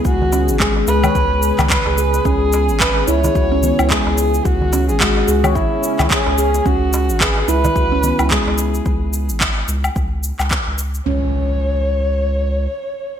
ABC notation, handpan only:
X:1
M:4/4
L:1/16
Q:"Swing 16ths" 1/4=109
K:C#m
V:1 name="Handpan"
z2 C2 G,2 G c z4 z G G2 | C z3 B2 E E F C B, E G,4 | z2 C2 G,2 G c z4 z G G2 | C z3 B2 E E F C B, E G,4 |
z16 | C2 z12 z2 |]